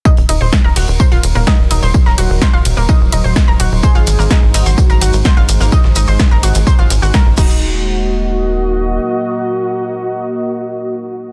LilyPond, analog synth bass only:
\new Staff \with { instrumentName = "Analog synth bass" } { \clef bass \time 4/4 \key ees \dorian \tempo 4 = 127 r16 ees,,16 ees,,16 ees,,16 r16 ees,,16 ees,,16 ees,,16 r16 ees,,16 ees,,16 ees,,16 r16 ees,,16 ees,,16 ees,,16 | r16 ees,,16 ees,,16 ees,,16 r16 ees,,16 ees,,16 ees,,16 r16 ees,,16 ees,,16 ees,,16 r16 ees,,16 ees,,16 ees,,16 | r16 aes,,16 aes,,16 aes,,16 r16 aes,,16 aes,,16 aes,,16 r16 aes,,16 aes,,16 aes,,16 r16 aes,,16 aes,,16 aes,,16 | r16 aes,,16 aes,,16 aes,,16 r16 aes,,16 aes,,16 aes,,16 r16 aes,,16 aes,,16 aes,,16 r16 aes,,16 ees,,8~ |
ees,,2. r4 | r1 | }